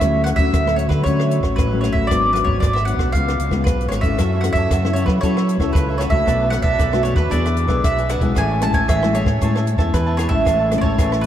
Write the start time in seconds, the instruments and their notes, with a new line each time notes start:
Already playing: mandolin E5
0.01 fingered electric bass D2, nylon-string guitar D3 F#3 A3 C#4, kick, cross-stick, closed hi-hat
0.24 mandolin F#5, cross-stick, closed hi-hat
0.36 fingered electric bass D2, nylon-string guitar F#3 A3 C#4, mandolin E5, kick, closed hi-hat
0.53 fingered electric bass D2, nylon-string guitar A2, kick, cross-stick, closed hi-hat
0.67 nylon-string guitar F#3 A3 C#4, cross-stick
0.76 mandolin C#5, closed hi-hat
0.88 fingered electric bass D3, mandolin B4, kick, cross-stick
1.04 fingered electric bass D3, nylon-string guitar D3 F#3 A3 C#4, mandolin C#5, kick, closed hi-hat
1.20 cross-stick
1.31 closed hi-hat
1.41 fingered electric bass A1, nylon-string guitar F#3 A3 C#4, kick, cross-stick
1.56 fingered electric bass A1, nylon-string guitar A2, mandolin B4, kick, cross-stick, closed hi-hat
1.72 nylon-string guitar F#3 A3 C#4
1.81 mandolin C#5, cross-stick, closed hi-hat
1.93 fingered electric bass A1, mandolin E5, kick
2.07 fingered electric bass G#1, nylon-string guitar G#2 F#3 B3, mandolin D5, kick, cross-stick, closed hi-hat
2.11 nylon-string guitar D4
2.33 nylon-string guitar F#3 B3 D4, mandolin B4, cross-stick, closed hi-hat
2.44 fingered electric bass G#1, mandolin C#5, kick
2.60 fingered electric bass G#1, nylon-string guitar G#2, mandolin D5, kick, cross-stick, closed hi-hat
2.73 mandolin E5, cross-stick
2.85 nylon-string guitar F#3 B3 D4, mandolin F#5, closed hi-hat
2.97 fingered electric bass B1, kick, cross-stick
3.12 fingered electric bass C#2, nylon-string guitar C#3 G#3 B3 F4, mandolin F5, kick, closed hi-hat
3.28 cross-stick, closed hi-hat
3.39 fingered electric bass C#2, closed hi-hat
3.51 nylon-string guitar G#3 B3 F4, kick, cross-stick
3.64 fingered electric bass B1, nylon-string guitar G#2, mandolin B4, kick, cross-stick, closed hi-hat
3.81 closed hi-hat
3.89 fingered electric bass G#1, mandolin C#5, cross-stick, closed hi-hat
4.01 nylon-string guitar C#4 E4 A4, mandolin E5, kick, closed hi-hat
4.18 fingered electric bass F#2, nylon-string guitar F#3, cavaquinho F#4 A4 C#5 E5, kick, cross-stick, closed hi-hat
4.33 cavaquinho A4 C#5 E5
4.41 nylon-string guitar C#4 E4, mandolin F#5, muted cavaquinho stroke, cross-stick, closed hi-hat
4.45 nylon-string guitar A4
4.53 fingered electric bass F#2, cavaquinho C#5 E5, mandolin E5, kick, closed hi-hat
4.58 cavaquinho A4
4.70 fingered electric bass F#2, nylon-string guitar C#3, cavaquinho F#4 A4 C#5 E5, kick, cross-stick, closed hi-hat
4.84 nylon-string guitar C#4 E4 A4, cavaquinho A4 C#5 E5, cross-stick
4.93 nylon-string guitar C#4 E4 A4, cavaquinho F#4 A4, mandolin C#5, closed hi-hat
4.98 cavaquinho C#5 E5
5.05 fingered electric bass F#3, mandolin B4, kick, cross-stick
5.21 nylon-string guitar F#3 C#4 E4 A4, fingered electric bass F#3, cavaquinho F#4 A4, mandolin C#5, kick, closed hi-hat
5.25 cavaquinho C#5 E5
5.37 cavaquinho A4 C#5 E5, cross-stick
5.48 muted cavaquinho stroke, closed hi-hat
5.58 fingered electric bass C#2, nylon-string guitar C#4 E4 A4, cavaquinho C#5 E5, kick, cross-stick
5.62 cavaquinho A4
5.73 fingered electric bass C#2, nylon-string guitar C#3, mandolin B4, kick, cross-stick, closed hi-hat
5.88 cavaquinho A4 C#5 E5
5.98 nylon-string guitar C#4 E4 A4, cavaquinho F#4 A4 C#5 E5, mandolin C#5, cross-stick, closed hi-hat
6.09 fingered electric bass C#2, nylon-string guitar A3 D4 F#4, cavaquinho A4 C#5 E5, mandolin E5, kick
6.25 fingered electric bass B1, nylon-string guitar B2, cavaquinho D4 A4 B4 D5, kick, cross-stick, closed hi-hat
6.39 cavaquinho A4 B4 D5
6.50 nylon-string guitar A3 D4 F#4, mandolin F#5, muted cavaquinho stroke, cross-stick, closed hi-hat
6.62 fingered electric bass B1, cavaquinho A4 B4 D5, mandolin E5, kick
6.78 fingered electric bass B1, nylon-string guitar F#2, cavaquinho D4 A4 B4 D5, kick, cross-stick, closed hi-hat
6.92 nylon-string guitar A3 D4 F#4, cavaquinho A4 B4 D5, cross-stick
7.02 nylon-string guitar A3 D4 F#4, cavaquinho D4 A4 B4 D5, mandolin C#5, closed hi-hat
7.14 fingered electric bass D#2, mandolin B4, kick, cross-stick
7.30 fingered electric bass E2, nylon-string guitar E3 B3 D4 G#4, cavaquinho D4 G#4 B4 E5, mandolin D5, kick, closed hi-hat
7.44 cavaquinho G#4 B4 E5, cross-stick, closed hi-hat
7.57 muted cavaquinho stroke, closed hi-hat
7.66 fingered electric bass B1, nylon-string guitar B3 D4 G#4, cavaquinho G#4 B4 E5, kick, cross-stick
7.84 fingered electric bass B1, nylon-string guitar B2, mandolin E5, kick, cross-stick, closed hi-hat
7.97 cavaquinho G#4 B4 E5, closed hi-hat
8.09 cavaquinho D4 G#4 B4 E5, mandolin F#5, cross-stick, closed hi-hat
8.19 fingered electric bass B1, nylon-string guitar G#3 C#4 E4, cavaquinho G#4 B4 E5, kick, closed hi-hat
8.35 fingered electric bass A1, nylon-string guitar A2, cavaquinho G#4 C#5 E5 A5, mandolin G#5, kick, cross-stick, closed hi-hat
8.49 cavaquinho C#5 E5 A5
8.61 nylon-string guitar G#3 C#4 E4, mandolin A5, muted cavaquinho stroke, cross-stick, closed hi-hat
8.71 fingered electric bass A1, cavaquinho C#5 E5 A5, mandolin G#5, kick, closed hi-hat
8.88 fingered electric bass A1, nylon-string guitar E3, cavaquinho G#4 C#5 E5 A5, mandolin E5, kick, cross-stick, closed hi-hat
9.01 nylon-string guitar G#3 C#4 E4, cavaquinho C#5 E5 A5, cross-stick
9.13 nylon-string guitar G#3 C#4 E4, cavaquinho G#4 C#5 E5 A5, mandolin C#5, closed hi-hat
9.24 fingered electric bass A2, kick, cross-stick
9.41 fingered electric bass A2, nylon-string guitar A2 G#3 C#4 E4, cavaquinho G#4 C#5 E5 A5, kick, closed hi-hat
9.55 cavaquinho C#5 E5 A5, cross-stick
9.66 muted cavaquinho stroke, closed hi-hat
9.76 fingered electric bass E2, nylon-string guitar G#3 C#4 E4, cavaquinho C#5 E5 A5, kick, cross-stick
9.94 fingered electric bass E2, nylon-string guitar E3, mandolin B4, kick, cross-stick, closed hi-hat
10.06 cavaquinho C#5 E5 A5
10.17 cavaquinho G#4 C#5 E5 A5, mandolin C#5, cross-stick, closed hi-hat
10.28 fingered electric bass A1, nylon-string guitar G#3 C#4 E4, cavaquinho C#5 E5 A5, mandolin E5, kick
10.45 fingered electric bass A1, nylon-string guitar A2, cavaquinho G#4 C#5 E5 A5, kick, cross-stick, closed hi-hat
10.59 cavaquinho C#5 E5 A5
10.71 nylon-string guitar G#3 C#4 E4, muted cavaquinho stroke, cross-stick, closed hi-hat
10.78 fingered electric bass A1, mandolin C#5 D5
10.83 cavaquinho C#5 E5 A5, kick
10.98 fingered electric bass A1, nylon-string guitar E3, cavaquinho G#4 C#5 E5 A5, kick, cross-stick, closed hi-hat
11.12 cavaquinho C#5 E5 A5, cross-stick
11.21 cavaquinho G#4, mandolin B4